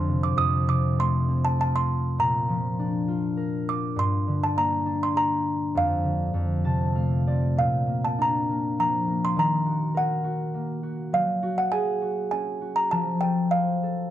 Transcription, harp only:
0, 0, Header, 1, 2, 480
1, 0, Start_track
1, 0, Key_signature, -2, "major"
1, 0, Tempo, 605449
1, 298, Time_signature, 3, 2, 24, 8
1, 2215, Tempo, 591716
1, 5095, Tempo, 609756
1, 7015, Tempo, 593472
1, 11318, End_track
2, 0, Start_track
2, 0, Title_t, "Harp"
2, 0, Program_c, 0, 46
2, 0, Note_on_c, 0, 41, 54
2, 0, Note_on_c, 0, 62, 49
2, 0, Note_on_c, 0, 65, 51
2, 67, Note_on_c, 0, 48, 45
2, 282, Note_off_c, 0, 41, 0
2, 292, Note_on_c, 0, 41, 62
2, 337, Note_off_c, 0, 48, 0
2, 539, Note_on_c, 0, 48, 49
2, 780, Note_on_c, 0, 57, 53
2, 1016, Note_on_c, 0, 60, 45
2, 1257, Note_off_c, 0, 65, 0
2, 1260, Note_on_c, 0, 65, 51
2, 1542, Note_off_c, 0, 62, 0
2, 1734, Note_on_c, 0, 46, 59
2, 1780, Note_off_c, 0, 41, 0
2, 1780, Note_off_c, 0, 48, 0
2, 1781, Note_off_c, 0, 57, 0
2, 1971, Note_on_c, 0, 53, 52
2, 2213, Note_on_c, 0, 62, 53
2, 2444, Note_off_c, 0, 65, 0
2, 2447, Note_on_c, 0, 65, 50
2, 2684, Note_on_c, 0, 70, 54
2, 3162, Note_on_c, 0, 43, 70
2, 3213, Note_off_c, 0, 46, 0
2, 3213, Note_off_c, 0, 53, 0
2, 3416, Note_on_c, 0, 50, 52
2, 3422, Note_off_c, 0, 60, 0
2, 3642, Note_on_c, 0, 58, 52
2, 3886, Note_off_c, 0, 62, 0
2, 3890, Note_on_c, 0, 62, 50
2, 4125, Note_on_c, 0, 67, 55
2, 4405, Note_off_c, 0, 70, 0
2, 4494, Note_off_c, 0, 65, 0
2, 4612, Note_on_c, 0, 41, 61
2, 4653, Note_off_c, 0, 43, 0
2, 4653, Note_off_c, 0, 50, 0
2, 4846, Note_on_c, 0, 50, 50
2, 5079, Note_off_c, 0, 41, 0
2, 5089, Note_on_c, 0, 41, 61
2, 5134, Note_off_c, 0, 50, 0
2, 5329, Note_on_c, 0, 48, 47
2, 5334, Note_on_c, 0, 81, 63
2, 5381, Note_off_c, 0, 58, 0
2, 5570, Note_on_c, 0, 57, 48
2, 5576, Note_on_c, 0, 77, 57
2, 5826, Note_on_c, 0, 60, 49
2, 5827, Note_on_c, 0, 74, 55
2, 6007, Note_off_c, 0, 67, 0
2, 6061, Note_on_c, 0, 46, 61
2, 6101, Note_off_c, 0, 41, 0
2, 6101, Note_off_c, 0, 48, 0
2, 6108, Note_off_c, 0, 57, 0
2, 6108, Note_off_c, 0, 81, 0
2, 6129, Note_off_c, 0, 62, 0
2, 6290, Note_on_c, 0, 58, 48
2, 6543, Note_on_c, 0, 62, 48
2, 6787, Note_off_c, 0, 58, 0
2, 6790, Note_on_c, 0, 58, 46
2, 6886, Note_off_c, 0, 77, 0
2, 7016, Note_on_c, 0, 53, 46
2, 7248, Note_off_c, 0, 58, 0
2, 7251, Note_on_c, 0, 58, 48
2, 7288, Note_off_c, 0, 74, 0
2, 7482, Note_on_c, 0, 51, 66
2, 7531, Note_off_c, 0, 62, 0
2, 7534, Note_off_c, 0, 46, 0
2, 7534, Note_off_c, 0, 53, 0
2, 7720, Note_on_c, 0, 66, 55
2, 7955, Note_on_c, 0, 70, 55
2, 8191, Note_off_c, 0, 66, 0
2, 8194, Note_on_c, 0, 66, 50
2, 8220, Note_off_c, 0, 60, 0
2, 8433, Note_off_c, 0, 58, 0
2, 8437, Note_on_c, 0, 58, 54
2, 8667, Note_off_c, 0, 66, 0
2, 8670, Note_on_c, 0, 66, 48
2, 8913, Note_on_c, 0, 54, 64
2, 8962, Note_off_c, 0, 51, 0
2, 9150, Note_off_c, 0, 66, 0
2, 9153, Note_on_c, 0, 66, 57
2, 9391, Note_on_c, 0, 68, 55
2, 9626, Note_off_c, 0, 66, 0
2, 9629, Note_on_c, 0, 66, 44
2, 9670, Note_off_c, 0, 70, 0
2, 9877, Note_on_c, 0, 61, 46
2, 10109, Note_off_c, 0, 66, 0
2, 10112, Note_on_c, 0, 66, 45
2, 10360, Note_on_c, 0, 53, 58
2, 10398, Note_off_c, 0, 54, 0
2, 10408, Note_off_c, 0, 66, 0
2, 10603, Note_on_c, 0, 69, 50
2, 10652, Note_off_c, 0, 58, 0
2, 10652, Note_off_c, 0, 68, 0
2, 10846, Note_on_c, 0, 72, 50
2, 10895, Note_off_c, 0, 61, 0
2, 11095, Note_off_c, 0, 69, 0
2, 11098, Note_on_c, 0, 69, 43
2, 11318, Note_off_c, 0, 53, 0
2, 11318, Note_off_c, 0, 69, 0
2, 11318, Note_off_c, 0, 72, 0
2, 11318, End_track
0, 0, End_of_file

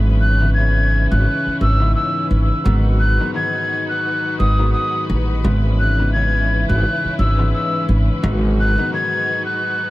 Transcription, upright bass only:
0, 0, Header, 1, 3, 480
1, 0, Start_track
1, 0, Tempo, 697674
1, 1824, Time_signature, 4, 2, 24, 8
1, 6811, End_track
2, 0, Start_track
2, 0, Title_t, "Upright bass"
2, 0, Program_c, 0, 32
2, 0, Note_on_c, 0, 32, 109
2, 738, Note_off_c, 0, 32, 0
2, 767, Note_on_c, 0, 32, 100
2, 857, Note_off_c, 0, 32, 0
2, 1107, Note_on_c, 0, 32, 89
2, 1326, Note_off_c, 0, 32, 0
2, 1586, Note_on_c, 0, 32, 88
2, 1714, Note_off_c, 0, 32, 0
2, 1827, Note_on_c, 0, 32, 113
2, 2178, Note_off_c, 0, 32, 0
2, 3026, Note_on_c, 0, 32, 93
2, 3245, Note_off_c, 0, 32, 0
2, 3506, Note_on_c, 0, 33, 94
2, 3725, Note_off_c, 0, 33, 0
2, 3746, Note_on_c, 0, 32, 106
2, 4578, Note_off_c, 0, 32, 0
2, 4606, Note_on_c, 0, 32, 99
2, 4697, Note_off_c, 0, 32, 0
2, 4946, Note_on_c, 0, 32, 90
2, 5165, Note_off_c, 0, 32, 0
2, 5426, Note_on_c, 0, 32, 91
2, 5554, Note_off_c, 0, 32, 0
2, 5666, Note_on_c, 0, 32, 114
2, 6018, Note_off_c, 0, 32, 0
2, 6811, End_track
3, 0, Start_track
3, 0, Title_t, "Muted upright bass strokes"
3, 1007, Note_on_c, 9, 29, 46
3, 1076, Note_off_c, 9, 29, 0
3, 4846, Note_on_c, 9, 29, 48
3, 4914, Note_off_c, 9, 29, 0
3, 6811, End_track
0, 0, End_of_file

